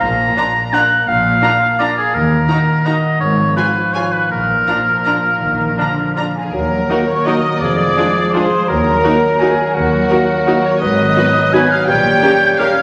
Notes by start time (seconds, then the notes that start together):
Already playing: F5
0.01 A#1 A#2 A#5
0.18 A#3
0.37 D4 F4 A#5
0.55 A#4
0.72 D4 F4 F5 F#5 A#5
0.91 A#4
1.07 A#1 A#2 F5
1.25 A#3
1.43 D4 F4 D5 A#5
1.79 D4 F4 D5 F5 A#5
1.97 G#4 A#4
2.14 D#2 D#3 A#4
2.32 A#3
2.49 D#4 F#4 D#5 A#5
2.68 A#4
2.86 D#4 F#4 D#5 F#5 A#5
3.03 A#4
3.20 G#1 G#2 C#5
3.38 F3
3.56 F4 B4 F5 G#5
3.76 F4
3.93 F4 C#5 F5 G#5
4.12 F4 B4
4.30 A#1 A#2 A#4
4.49 F3
4.67 A#2 D4 F4 D5 A#5
4.87 F4
5.05 D4 F4 F5 A#5
5.25 F4
5.42 A#1 A#2 D#3
5.60 F3
5.78 D3 D4 F4 D5 A#5
5.98 F4
6.17 D4 F4 F5 A#5
6.36 F4 G#4 G#5
6.52 D#2 D#3 F#3 A#4 A#5
6.71 F#3
6.88 A#3 D#4 F#4 A#4
7.08 A#4 C#5 C#6
7.26 F#3 A#3 D#4 F#4 A#4 D#5 D#6
7.44 A#4
7.61 F1 F2 F3 G#4 D5 D6
7.79 G#3
7.97 G#3 D4 F4 G#4
8.34 G#3 D4 F4 G#4 C5 C6
8.52 G#4
8.68 D#2 D#3 F#3 A#4 A#5
8.86 F#3
9.04 A#3 D#4 F#4 A#4
9.23 A#4
9.40 A#3 D#4 F#4 G#4 A#4 G#5
9.59 A#4
9.74 D#2 D#3 F#3 F#4 A#4 F#5
9.93 F#3
10.10 A#3 D#4 F#4 A#4
10.29 A#4
10.46 A#3 D#4 F#4 A#4
10.64 A#4 C#5 C#6
10.81 G#1 G#2 F#3 B4 D#5 D#6
10.99 D#3
11.15 F#3 B3 D#4 F#4 B4
11.35 D#4
11.53 F#3 B3 D#4 F#4 B4 G#5 G#6
11.70 D#4 F5 F6
11.87 A#1 A#2 G3 C#5 G5 G6
12.05 A#3
12.22 G3 C#4 G4 A#4
12.41 C#4
12.58 C#4 G4 A#4 F5 F6
12.77 C#4